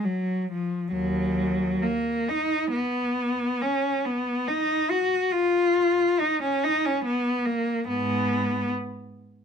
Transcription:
0.05 F#3
0.52 F3
0.92 D#2 F#3
1.82 A#3
2.29 D#4
2.73 B3
3.62 C#4
4.05 B3
4.48 D#4
4.90 F#4
5.33 F4
6.19 D#4
6.43 C#4
6.64 D#4
6.85 C#4
7.05 B3
7.46 A#3
7.88 G#2 B3

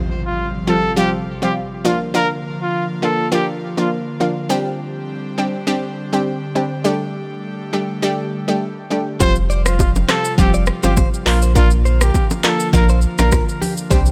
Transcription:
Already playing: C3 F3 G3 C4 F4, impact
0.26 F4
0.67 F3 G3 C4 F4 A4
0.96 F3 G3 C4 F4 G4
1.42 F3 G3 C4 F4 G4
1.85 D3 F3 A#3 D4 F4
2.14 F3 A#3 D4 F4 A#4
2.62 F4
3.02 F3 A#3 D4 F4 A4
3.32 F3 A#3 D4 F4 G4
3.77 F3 A#3 D4 F4
4.20 F3 A#3 D4 F4
4.49 G3 C4 D4 G4
5.38 G3 C4 D4 G4
5.67 G3 C4 D4 G4
6.13 G3 C4 D4 G4
6.55 G3 C4 D4 G4
6.84 G3 A3 D4 G4
7.73 G3 A3 D4 G4
8.02 G3 A3 D4 G4
8.48 G3 A3 D4 G4
8.90 G3 A3 D4 G4
9.20 F1 C3 F3 G3 C4 F4 C5, kick, low conga, shaker
9.35 shaker
9.50 D5, shaker
9.66 F4 C5, cross-stick, shaker
9.79 kick, high bongo, shaker
9.96 low bongo, shaker
10.08 F3 G3 C4 F4 A4 C5, cross-stick, clap, low bongo, shaker
10.25 shaker
10.38 F1 F3 G3 C4 F4 G4, kick, low conga, shaker
10.54 D5, shaker
10.66 cross-stick, shaker
10.83 G1 F3 G3 C4 F4 G4 C5, low bongo, shaker
10.97 C5, kick, high bongo, shaker
11.14 shaker
11.26 A#1 D3 F3 A#3 D4 F4 A#4, cross-stick, clap, open hi-hat, low conga, shaker
11.42 C5, shaker
11.55 F3 A#3 D4 F4 A#4, kick, low conga, shaker
11.71 shaker
11.85 C5, shaker
12.01 G4 A#4, cross-stick, shaker
12.14 kick, high bongo, shaker
12.30 low bongo, shaker
12.44 F3 A#3 D4 F4 A4 A#4, clap, low bongo, shaker
12.60 shaker
12.73 A#1 F3 A#3 D4 F4 A#4, kick, low conga, shaker
12.89 C5, shaker
13.01 shaker
13.18 A#1 F3 A#3 D4 F4 A#4, cross-stick, low bongo, shaker
13.32 A#4, kick, cross-stick, high bongo, shaker
13.49 shaker
13.62 G4, open hi-hat, low conga, shaker
13.77 shaker
13.90 C2 G3 C4 D4 G4 C5, kick, low conga, shaker
14.06 shaker

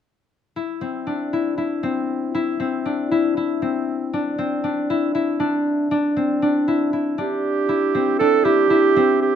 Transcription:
0.56 E4
0.81 C4
1.07 D4
1.33 E4
1.58 E4
1.83 C4
2.35 E4
2.60 C4
2.86 D4
3.11 E4
3.37 E4
3.62 C4
4.13 D4
4.38 C4
4.64 D4
4.90 E4
5.15 E4
5.40 D4
5.91 D4
6.16 C4
6.42 D4
6.68 E4
6.93 E4
7.18 D4 G4
7.69 E4
7.95 C4
8.19 D4 A4
8.44 E4 G4
8.70 E4
8.96 C4
9.21 G4

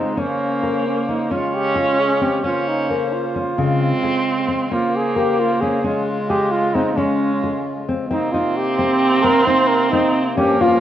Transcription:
Already playing: C#3 G#3 C4 D#4 F4
0.17 A#3 C#4 C5
0.63 A#4
0.87 C#4
1.09 C#4 D#4
1.31 C#3 G#3 C#4 F4
1.55 G4
1.76 F4 G#4
2.00 G#4
2.21 C4 G4
2.44 A#3 C#4 F4 C5
2.68 D#4
2.90 C#4 A#4
3.13 F4
3.36 C#4
3.58 C#3 G#3 C4 F4
4.03 G#4
4.48 C4
4.71 A#3 C#4 F4 C5
4.96 G#4
5.16 G4 A#4
5.39 F4
5.61 C#4 G#4
5.84 G#3 C#4 F4
6.29 G4 G#4
6.51 F4
6.74 C4 D#4
6.95 G#3 C#4
7.44 G#4
7.89 C4
8.10 C3 A#3 C4 D#4
8.33 D#4 F4
8.57 G4
8.79 C4
9.23 C4 A#4
9.46 D#4 C5
9.68 A#4
9.91 C4 D#4
10.37 G2 F3 A#3 C#4 G4
10.61 F4

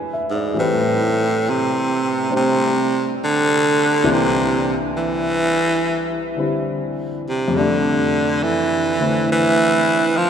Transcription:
Already playing: E2 E3 G#3 D4 B4 G#5 B5
0.13 E5
0.30 G#2
0.35 D5
0.54 A2 E3 G3 C4
0.59 A2 B4
1.50 C3
2.29 G3 A3 D4 C5
2.36 C3
3.24 D3
4.03 C2 C3 E3 A#3 D4
4.12 C3
4.97 E3
6.36 D3 G3 C4 E4
7.29 C3
7.48 F2 C3
7.54 D3 G3 A3
7.59 D4
8.43 E3
8.99 D3 A3 C4 E4
9.32 E3
10.17 F3

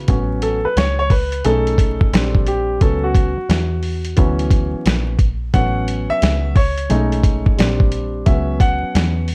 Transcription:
0.08 A1 F#3 B3 C#4, kick, closed hi-hat
0.42 A4, closed hi-hat
0.65 B4, muted picked electric bass stroke
0.77 C#2 C#5, snare, closed hi-hat
0.99 C#5
1.10 B4, kick, open hi-hat
1.32 closed hi-hat
1.44 B1 A3 C#4 D#4 G#4 A4, closed hi-hat
1.67 closed hi-hat
1.78 kick, closed hi-hat
2.01 muted picked electric bass stroke, kick
2.13 A#1 G3 C4 D4, snare, closed hi-hat
2.35 kick
2.47 G4, closed hi-hat
2.80 C#2 F#3 B3 C#4 A4, kick, closed hi-hat
3.04 F#4
3.15 kick, closed hi-hat
3.37 muted picked electric bass stroke
3.49 E2, snare, closed hi-hat
3.83 open hi-hat
4.05 closed hi-hat
4.17 D2 E3 F#3 B3 C#4, kick, closed hi-hat
4.39 closed hi-hat
4.51 kick, closed hi-hat
4.74 muted picked electric bass stroke
4.86 A#1, snare, closed hi-hat
5.19 kick, closed hi-hat
5.53 A1 F#3 B3 C#4 F#5, kick, closed hi-hat
5.88 closed hi-hat
6.10 E5, muted picked electric bass stroke
6.22 C#2, snare, closed hi-hat
6.56 C#5, kick, open hi-hat
6.78 closed hi-hat
6.89 B1 G#3 A3 C#4 D#4, closed hi-hat
7.12 closed hi-hat
7.23 kick, closed hi-hat
7.46 kick
7.57 A#1 G3 C4 D4, snare, closed hi-hat
7.80 kick
7.92 closed hi-hat
8.26 C#2 F#3 B3 C#4 E5, kick, closed hi-hat
8.60 F#5, kick, closed hi-hat
8.83 muted picked electric bass stroke
8.95 E2, snare, closed hi-hat
9.28 open hi-hat

